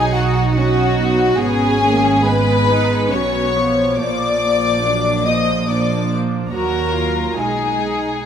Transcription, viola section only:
0.00 0.53 F#3 medium
0.00 0.53 D#4 medium
0.56 1.39 F#3 medium
0.56 1.39 D#4 medium
1.39 1.79 B3 medium
1.39 2.21 C#4 medium
1.83 2.26 A#3 medium
2.26 3.11 G#3 medium
2.26 3.97 B3 medium
3.14 3.55 F#3 medium
3.56 3.98 F3 medium
3.98 4.82 F3 soft
3.98 4.82 A#3 soft
4.84 5.27 F#3 soft
4.84 5.68 A#3 soft
5.28 5.69 F3 soft
5.70 6.52 F3 medium
5.70 6.53 D4 soft
6.54 7.35 F#3 soft
6.54 7.35 A#3 soft
7.40 8.26 G#3 soft
7.40 8.26 D#4 soft

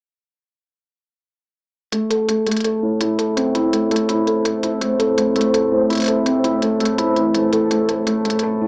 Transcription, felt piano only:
1.92 2.09 A3 medium
2.10 2.27 A4 medium
2.28 2.45 A3 medium
2.46 2.63 A3 medium
2.65 2.82 A4 medium
2.83 3.00 A2 medium
3.01 3.17 E4 medium
3.19 3.35 A4 medium
3.36 3.53 C4 medium
3.55 3.71 E4 medium
3.73 3.89 A3 medium
3.91 4.08 A3 medium
4.09 4.26 E4 medium
4.27 4.44 A4 medium
4.45 4.62 A4 medium
4.63 4.81 E4 medium
4.81 4.98 A3 medium
4.99 5.16 A4 medium
5.17 5.34 A3 medium
5.35 5.52 A3 medium
5.54 5.71 A4 medium
5.72 5.89 A2 medium
5.90 6.06 E4 medium
6.08 6.24 A4 medium
6.26 6.43 C4 medium
6.44 6.61 E4 medium
6.62 6.79 A3 medium
6.80 6.97 A3 medium
6.98 7.15 E4 medium
7.17 7.34 E3 medium
7.34 7.51 A3 medium
7.52 7.69 A4 medium
7.70 7.87 A3 medium
7.89 8.05 A4 medium
8.07 8.23 A3 medium
8.25 8.42 A3 medium
8.43 8.60 A4 medium
8.61 8.68 A2 medium

